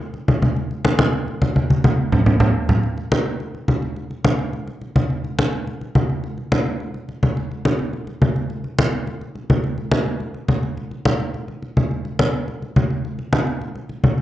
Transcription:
0.14 high conga
0.28 high conga
0.42 high conga
0.56 high conga
0.71 high conga
0.85 high conga
0.99 high conga
1.13 high conga
1.28 high conga
1.42 high conga
1.56 high conga
1.70 high conga
1.84 high conga
2.12 low conga
2.26 low conga
2.40 low conga
2.69 low conga
2.83 high conga
2.98 high conga
3.12 high conga
3.26 high conga
3.40 high conga
3.54 high conga
3.68 high conga
3.82 high conga
3.96 high conga
4.11 high conga
4.25 high conga
4.39 high conga
4.53 high conga
4.68 high conga
4.81 high conga
4.96 high conga
5.10 high conga
5.24 high conga
5.39 high conga
5.53 high conga
5.67 high conga
5.81 high conga
5.95 high conga
6.10 high conga
6.24 high conga
6.38 high conga
6.52 high conga
6.66 high conga
6.80 high conga
6.94 high conga
7.09 high conga
7.23 high conga
7.37 high conga
7.51 high conga
7.65 high conga
7.79 high conga
7.93 high conga
8.07 high conga
8.22 high conga
8.36 high conga
8.50 high conga
8.64 high conga
8.79 high conga
8.93 high conga
9.07 high conga
9.21 high conga
9.35 high conga
9.50 high conga
9.64 high conga
9.78 high conga
9.92 high conga
10.06 high conga
10.20 high conga
10.34 high conga
10.48 high conga
10.63 high conga
10.77 high conga
10.91 high conga
11.05 high conga
11.20 high conga
11.34 high conga
11.48 high conga
11.62 high conga
11.77 high conga
11.91 high conga
12.05 high conga
12.19 high conga
12.34 high conga
12.48 high conga
12.62 high conga
12.76 high conga
12.90 high conga
13.05 high conga
13.19 high conga
13.33 high conga
13.47 high conga
13.62 high conga
13.76 high conga
13.89 high conga
14.04 high conga
14.18 high conga

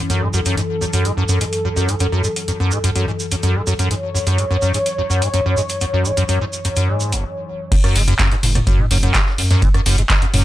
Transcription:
Already playing: F#2 E3
0.10 F#2 A4, closed hi-hat, shaker
0.22 G#2
0.34 F#2, shaker
0.45 F#2, closed hi-hat, shaker
0.57 G#2, closed hi-hat, shaker
0.81 F#2, shaker
0.93 F#2, closed hi-hat, shaker
1.05 G#2, closed hi-hat, shaker
1.17 F#2
1.29 F#2, shaker
1.41 G#2, closed hi-hat, shaker
1.53 closed hi-hat, shaker
1.65 F#2
1.76 F#2, shaker
1.88 G#2, closed hi-hat, shaker
1.99 F#2, closed hi-hat, shaker
2.12 F#2
2.24 G#2, shaker
2.36 closed hi-hat, shaker
2.48 F#2, closed hi-hat, shaker
2.60 F#2
2.71 G#2, shaker
2.84 F#2, closed hi-hat, shaker
2.96 F#2, closed hi-hat, shaker
3.08 G#2
3.20 shaker
3.31 F#2, closed hi-hat, shaker
3.43 F#2, closed hi-hat, shaker
3.55 G#2
3.67 F#2, shaker
3.79 F#2, closed hi-hat, shaker
3.91 G#2 C#5, closed hi-hat, shaker
4.15 F#2, shaker
4.27 F#2, closed hi-hat, shaker
4.38 G#2, closed hi-hat, shaker
4.51 F#2
4.62 F#2, shaker
4.74 G#2, closed hi-hat, shaker
4.86 closed hi-hat, shaker
4.98 F#2
5.10 F#2, shaker
5.22 G#2, closed hi-hat, shaker
5.34 F#2, closed hi-hat, shaker
5.46 F#2
5.57 G#2, shaker
5.69 closed hi-hat, shaker
5.81 F#2, closed hi-hat, shaker
5.93 F#2
6.05 G#2, shaker
6.17 F#2, closed hi-hat, shaker
6.28 F#2, closed hi-hat, shaker
6.41 G#2
6.53 shaker
6.65 F#2, closed hi-hat, shaker
6.76 F#2, closed hi-hat, shaker
6.89 G#2
7.00 shaker
7.12 F#1, closed hi-hat, shaker
7.72 F#2, kick, closed hi-hat, crash
7.84 F#2, cross-stick, closed hi-hat
7.95 F#1 G#2, closed hi-hat, open hi-hat, ride
8.08 F#2, closed hi-hat
8.19 F#2, kick, snare, clap, closed hi-hat
8.32 G#2, closed hi-hat
8.43 F#1, closed hi-hat, mid tom, open hi-hat, ride
8.55 F#2, cross-stick, closed hi-hat, mid tom
8.67 F#2, kick, closed hi-hat
8.79 G#2, mid tom
8.91 F#1 F#2, closed hi-hat, open hi-hat, ride
9.03 F#2, closed hi-hat
9.14 kick, cross-stick, snare, clap, closed hi-hat
9.27 snare
9.38 F#2, closed hi-hat, open hi-hat, ride
9.51 F#2, snare, closed hi-hat
9.62 G#2, kick, closed hi-hat
9.74 F#2, cross-stick, closed hi-hat
9.85 F#1 F#2, closed hi-hat, open hi-hat, ride
9.98 G#2, closed hi-hat
10.10 kick, snare, clap, closed hi-hat
10.22 F#2, closed hi-hat
10.33 F#1 F#2, closed hi-hat, mid tom, open hi-hat, ride

